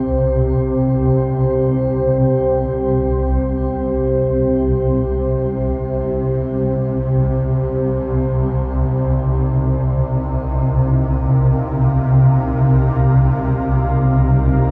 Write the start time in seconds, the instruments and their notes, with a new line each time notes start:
Already playing: synth drone C2 C3, ambient pad C4 G4 C5
8.02 ambient pad D#4
9.30 ambient pad A#4
9.65 ambient pad F5